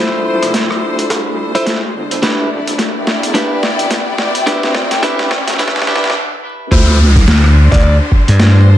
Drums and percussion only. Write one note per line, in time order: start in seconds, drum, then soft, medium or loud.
0.43 cross-stick medium
0.43 closed hi-hat medium
0.54 kick medium
0.54 snare medium
0.54 closed hi-hat medium
0.71 cross-stick medium
0.99 closed hi-hat medium
1.10 kick medium
1.10 snare medium
1.10 closed hi-hat medium
1.55 closed hi-hat medium
1.66 kick loud
1.66 snare medium
1.66 closed hi-hat medium
2.11 closed hi-hat medium
2.22 kick loud
2.22 snare medium
2.22 closed hi-hat medium
2.67 closed hi-hat medium
2.78 kick medium
2.78 snare medium
2.78 closed hi-hat medium
3.07 snare medium
3.23 closed hi-hat medium
3.35 kick loud
3.35 snare medium
3.35 closed hi-hat medium
3.63 snare medium
3.79 closed hi-hat medium
3.91 kick loud
3.91 snare medium
3.91 closed hi-hat medium
4.18 snare medium
4.35 closed hi-hat medium
4.47 kick loud
4.47 snare medium
4.47 closed hi-hat medium
4.63 snare medium
4.74 snare medium
4.91 snare medium
4.91 closed hi-hat medium
5.03 kick medium
5.03 snare loud
5.03 closed hi-hat medium
5.19 snare medium
5.31 snare loud
5.48 snare medium
5.48 closed hi-hat medium
5.50 snare medium
5.54 snare medium
5.57 kick loud
5.57 snare soft
5.59 snare loud
5.59 closed hi-hat medium
5.63 snare soft
5.68 snare medium
5.72 snare soft
5.76 snare medium
5.82 snare medium
5.87 snare loud
5.96 snare medium
6.04 snare loud
6.10 snare loud
6.71 kick loud
6.71 cross-stick soft
6.71 closed hi-hat medium
6.71 crash loud
7.16 kick loud
7.16 cross-stick medium
7.16 closed hi-hat medium
7.28 snare loud
7.28 closed hi-hat medium
7.44 cross-stick medium
7.72 kick loud
7.72 closed hi-hat medium
7.74 closed hi-hat medium
7.78 closed hi-hat soft
7.80 closed hi-hat soft
7.82 closed hi-hat soft
8.12 kick medium
8.28 closed hi-hat medium
8.40 snare loud
8.40 closed hi-hat medium